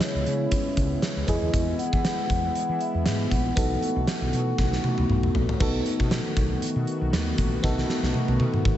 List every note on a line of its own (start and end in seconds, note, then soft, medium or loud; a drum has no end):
0.00 1.26 C#3 medium
0.00 1.24 G#3 medium
0.00 1.23 B3 medium
0.00 5.57 B3 medium
0.00 1.24 C#4 medium
0.00 1.24 E4 medium
0.00 1.26 E4 medium
0.00 1.24 G#4 medium
0.00 0.99 C#5 medium
0.00 snare loud
0.00 closed hi-hat medium
0.15 0.23 C#2 medium
0.26 0.46 C#3 medium
0.26 closed hi-hat medium
0.51 kick medium
0.51 closed hi-hat medium
0.77 0.96 C#2 medium
0.77 kick medium
0.77 closed hi-hat medium
1.02 snare loud
1.02 closed hi-hat medium
1.16 1.25 C#2 medium
1.27 1.38 E2 medium
1.27 5.56 E3 medium
1.27 3.55 G#3 medium
1.27 3.27 B3 medium
1.27 3.55 E4 medium
1.27 3.28 E4 medium
1.27 3.28 G#4 medium
1.27 1.80 D#5 loud
1.27 kick medium
1.27 closed hi-hat medium
1.42 1.50 D#2 medium
1.54 1.73 E2 loud
1.54 kick loud
1.54 closed hi-hat loud
1.79 2.28 F#5 loud
1.79 closed hi-hat medium
1.93 2.12 E3 loud
1.93 kick medium
2.05 snare loud
2.05 closed hi-hat medium
2.29 2.49 E2 medium
2.29 2.82 F#5 loud
2.29 kick medium
2.29 closed hi-hat medium
2.55 closed hi-hat medium
2.69 2.78 E3 medium
2.79 3.32 E5 loud
2.79 closed hi-hat medium
2.94 3.03 E2 medium
3.06 3.25 G#2 medium
3.06 snare loud
3.06 closed hi-hat medium
3.30 3.50 A#1 medium
3.30 5.05 F#5 medium
3.30 kick medium
3.30 closed hi-hat medium
3.56 3.76 B1 loud
3.56 5.58 A3 medium
3.56 5.56 B3 medium
3.56 5.56 D#4 medium
3.56 5.58 F#4 medium
3.56 5.56 F#4 medium
3.56 5.57 A4 medium
3.56 kick loud
3.56 closed hi-hat medium
3.82 closed hi-hat medium
3.96 4.05 B1 medium
4.07 snare loud
4.07 closed hi-hat medium
4.21 4.30 B1 loud
4.33 4.52 B2 medium
4.33 closed hi-hat medium
4.58 4.77 B1 loud
4.58 kick medium
4.58 snare medium
4.73 snare medium
4.84 muted fretless electric bass stroke soft
4.84 high tom medium
4.98 5.07 C#2 medium
4.98 high tom medium
5.09 5.28 B1 medium
5.09 mid tom medium
5.23 mid tom medium
5.35 5.45 A#1 medium
5.35 floor tom medium
5.49 floor tom medium
5.60 5.79 B1 loud
5.60 8.77 D#3 medium
5.60 8.77 A3 medium
5.60 7.59 B3 medium
5.60 8.77 B3 medium
5.60 7.60 D#4 medium
5.60 7.60 F#4 medium
5.60 8.77 F#4 medium
5.60 7.60 A4 medium
5.60 kick loud
5.60 crash medium
5.86 closed hi-hat medium
6.00 6.19 B2 loud
6.00 kick medium
6.11 snare loud
6.11 closed hi-hat medium
6.36 6.55 B1 medium
6.36 kick medium
6.36 closed hi-hat medium
6.62 muted fretless electric bass stroke medium
6.62 closed hi-hat medium
6.76 6.84 B2 medium
6.87 closed hi-hat medium
7.01 7.10 B1 medium
7.13 7.32 D#2 medium
7.13 snare loud
7.13 closed hi-hat medium
7.38 7.57 A#1 medium
7.38 kick medium
7.38 closed hi-hat medium
7.63 7.83 B1 loud
7.63 8.77 B3 medium
7.63 8.77 D#4 medium
7.63 8.77 F#4 medium
7.63 8.77 A4 medium
7.63 kick loud
7.63 snare medium
7.78 snare medium
7.89 snare medium
8.03 8.11 B1 medium
8.03 snare medium
8.14 high tom medium
8.28 8.37 B1 medium
8.28 high tom medium
8.40 8.59 B2 loud
8.40 high tom medium
8.54 mid tom medium
8.65 kick medium
8.65 mid tom medium